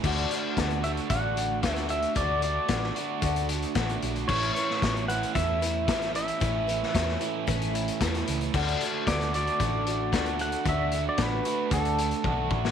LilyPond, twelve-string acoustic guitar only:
\new Staff \with { instrumentName = "Twelve-string acoustic guitar" } { \time 4/4 \key d \lydian \tempo 4 = 113 <d a d' fis' a'>8 <d' fis' a'>8 <a d' fis' a'>8 <d' fis' a'>8 <d a d' fis' a'>8 <d' fis' a'>8 <a d' fis' a'>8 <d' fis' a'>8 | <d a d' fis' a'>8 <d' fis' a'>8 <a d' fis' a'>8 <d' fis' a'>8 <d a d' fis' a'>8 <d' fis' a'>8 <a d' fis' a'>8 <d' fis' a'>8 | <a cis' e' b'>8 <cis' e' b'>8 <a cis' e' b'>8 <cis' e' b'>8 <a cis' e' b'>8 <cis' e' b'>8 <a cis' e' b'>8 <cis' e' b'>8 | <a cis' e' b'>8 <cis' e' b'>8 <a cis' e' b'>8 <cis' e' b'>8 <a cis' e' b'>8 <cis' e' b'>8 <a cis' e' b'>8 <cis' e' b'>8 |
<d a d' fis' a'>8 <d' fis' a'>8 <a d' fis' a'>8 <d' fis' a'>8 <d a d' fis' a'>8 <d' fis' a'>8 <a d' fis' a'>8 <d' fis' a'>8 | <d a d' fis' a'>8 <d' fis' a'>8 <a d' fis' a'>8 <d' fis' a'>8 <d a d' fis' a'>8 <d' fis' a'>8 <a d' fis' a'>8 <d' fis' a'>8 | }